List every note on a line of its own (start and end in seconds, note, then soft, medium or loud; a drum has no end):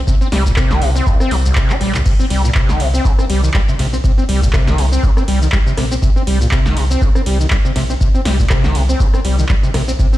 0.07 0.15 C3 loud
0.07 kick loud
0.07 shaker medium
0.21 0.27 C4 loud
0.21 shaker soft
0.32 0.51 C2 loud
0.32 0.44 G3 medium
0.32 snare medium
0.32 open hi-hat loud
0.46 0.52 A#2 medium
0.46 kick medium
0.46 shaker medium
0.56 0.72 C3 loud
0.56 kick loud
0.56 cross-stick medium
0.56 clap loud
0.56 shaker medium
0.71 0.79 C2 loud
0.71 0.83 D#3 loud
0.71 snare medium
0.71 shaker soft
0.82 1.01 C2 medium
0.82 0.89 C3 loud
0.82 open hi-hat medium
0.96 1.08 C4 medium
0.96 shaker medium
1.06 1.18 C2 loud
1.06 kick loud
1.06 shaker medium
1.20 1.33 C4 loud
1.20 cross-stick medium
1.20 shaker soft
1.31 1.51 C2 medium
1.31 1.36 F3 loud
1.31 open hi-hat loud
1.45 1.54 C2 medium
1.45 shaker medium
1.55 1.71 C3 loud
1.55 kick loud
1.55 clap loud
1.55 shaker medium
1.70 1.76 D#4 medium
1.70 clap medium
1.70 shaker soft
1.81 2.00 A#1 medium
1.81 1.92 G3 loud
1.81 open hi-hat medium
1.95 2.01 C2 loud
1.95 clap loud
1.95 shaker medium
2.06 2.13 C3 loud
2.06 kick loud
2.06 crash medium
2.06 shaker medium
2.19 2.25 C4 loud
2.19 shaker soft
2.30 2.50 C2 loud
2.30 2.42 G3 medium
2.30 open hi-hat loud
2.30 ride medium
2.44 2.50 A#2 medium
2.44 shaker medium
2.55 2.71 C3 loud
2.55 kick loud
2.55 clap loud
2.55 shaker medium
2.69 2.77 C2 loud
2.69 2.81 D#3 loud
2.69 snare medium
2.69 shaker soft
2.80 2.99 C2 medium
2.80 2.88 C3 loud
2.80 open hi-hat medium
2.80 ride medium
2.94 3.06 C4 medium
2.94 shaker medium
3.05 3.12 C3 medium
3.05 kick loud
3.05 shaker medium
3.19 3.25 C4 loud
3.19 cross-stick medium
3.19 shaker soft
3.30 3.49 C2 medium
3.30 3.41 G3 medium
3.30 open hi-hat loud
3.30 ride medium
3.44 3.50 D#3 medium
3.44 shaker medium
3.54 3.59 G3 loud
3.54 kick loud
3.54 clap loud
3.54 shaker medium
3.68 3.74 C3 loud
3.68 shaker soft
3.79 3.99 A#1 medium
3.79 3.87 C3 loud
3.79 snare soft
3.79 open hi-hat medium
3.79 ride medium
3.93 3.97 C4 medium
3.93 shaker medium
4.04 4.12 C3 loud
4.04 kick loud
4.04 shaker medium
4.18 4.24 C4 loud
4.18 shaker soft
4.29 4.48 C2 medium
4.29 4.40 G3 medium
4.29 open hi-hat loud
4.29 ride medium
4.43 4.49 A#2 medium
4.43 kick medium
4.43 shaker medium
4.53 4.69 C3 loud
4.53 kick loud
4.53 cross-stick medium
4.53 clap loud
4.53 shaker medium
4.67 4.76 C2 loud
4.67 4.80 D#3 loud
4.67 snare medium
4.67 shaker soft
4.78 4.98 C2 medium
4.78 4.86 C3 loud
4.78 open hi-hat loud
4.78 ride medium
4.92 5.05 C4 medium
4.92 shaker medium
5.03 5.11 C3 medium
5.03 kick loud
5.03 shaker medium
5.17 5.23 C4 loud
5.17 cross-stick medium
5.17 shaker soft
5.28 5.47 C2 medium
5.28 5.39 G3 medium
5.28 open hi-hat loud
5.28 ride medium
5.42 5.48 D#3 medium
5.42 shaker medium
5.52 5.57 G3 loud
5.52 kick loud
5.52 clap loud
5.52 shaker medium
5.67 5.73 C3 loud
5.67 shaker soft
5.78 5.97 A#1 medium
5.78 5.85 C3 loud
5.78 cross-stick medium
5.78 snare soft
5.78 open hi-hat medium
5.78 ride medium
5.91 5.95 C4 medium
5.91 shaker medium
6.02 6.10 C3 loud
6.02 kick loud
6.02 shaker medium
6.16 6.22 C4 loud
6.16 shaker soft
6.27 6.46 C2 loud
6.27 6.39 G3 medium
6.27 open hi-hat loud
6.27 ride medium
6.41 6.47 A#2 medium
6.41 shaker medium
6.51 6.67 C3 loud
6.51 kick loud
6.51 clap loud
6.51 shaker medium
6.66 6.74 C2 loud
6.66 6.78 D#3 loud
6.66 snare medium
6.66 shaker soft
6.77 6.96 C2 medium
6.77 6.84 C3 loud
6.77 open hi-hat loud
6.77 ride medium
6.91 7.03 C4 medium
6.91 shaker medium
7.01 7.09 C3 medium
7.01 kick loud
7.01 shaker medium
7.15 7.21 C4 loud
7.15 cross-stick medium
7.15 shaker soft
7.26 7.46 C2 medium
7.26 7.38 G3 medium
7.26 open hi-hat loud
7.26 ride medium
7.40 7.46 D#3 medium
7.40 shaker medium
7.50 7.56 G3 loud
7.50 kick loud
7.50 clap loud
7.50 shaker medium
7.65 7.71 C3 loud
7.65 shaker soft
7.76 7.95 A#1 medium
7.76 7.84 C3 loud
7.76 snare soft
7.76 open hi-hat loud
7.76 ride medium
7.90 7.93 C4 medium
7.90 shaker medium
8.01 8.08 C3 loud
8.01 kick loud
8.01 shaker medium
8.15 8.21 C4 loud
8.15 shaker soft
8.25 8.45 C2 loud
8.25 8.37 G3 medium
8.25 snare medium
8.25 open hi-hat loud
8.25 ride medium
8.39 8.45 A#2 medium
8.39 kick medium
8.39 shaker medium
8.50 8.66 C3 loud
8.50 kick loud
8.50 cross-stick medium
8.50 clap loud
8.50 shaker medium
8.64 8.72 C2 loud
8.64 8.77 D#3 loud
8.64 snare medium
8.64 shaker soft
8.75 8.94 C2 medium
8.75 8.83 C3 loud
8.75 open hi-hat loud
8.75 ride medium
8.89 9.01 C4 medium
8.89 shaker medium
9.00 9.08 C3 medium
9.00 kick loud
9.00 shaker medium
9.14 9.20 C4 loud
9.14 cross-stick medium
9.14 shaker soft
9.25 9.44 C2 medium
9.25 9.36 G3 medium
9.25 open hi-hat loud
9.25 ride medium
9.39 9.45 D#3 medium
9.39 shaker medium
9.49 9.54 G3 loud
9.49 kick loud
9.49 clap loud
9.49 shaker medium
9.63 9.69 C3 loud
9.63 shaker soft
9.74 9.94 A#1 medium
9.74 9.82 C3 loud
9.74 cross-stick medium
9.74 snare soft
9.74 open hi-hat loud
9.74 ride medium
9.88 9.92 C4 medium
9.88 shaker medium
9.99 10.07 C3 loud
9.99 kick loud
9.99 shaker medium
10.13 10.18 C4 loud
10.13 shaker soft